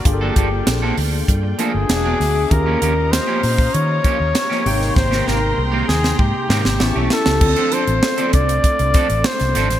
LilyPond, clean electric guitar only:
\new Staff \with { instrumentName = "Clean electric guitar" } { \time 4/4 \key d \phrygian \tempo 4 = 98 r16 <f bes d' a'>16 <f bes d' a'>16 r8 <f bes d' a'>16 r4 <f bes d' a'>16 r8 <fis b d' gis'>16 r8 | r16 <f bes des' g'>16 <f bes des' g'>16 r8 <f bes des' g'>16 r4 <f bes des' g'>16 r8 <f bes des' g'>16 r8 | r16 <ees bes c' g'>16 <ees bes c' g'>16 r8 <ees bes c' g'>16 r4 <ees bes c' g'>16 r8 <e a cis' g'>16 r8 | r16 <f c' d' a'>16 <f c' d' a'>16 r8 <f c' d' a'>16 r4 <f c' d' a'>16 r8. <f c' d' a'>16 r16 | }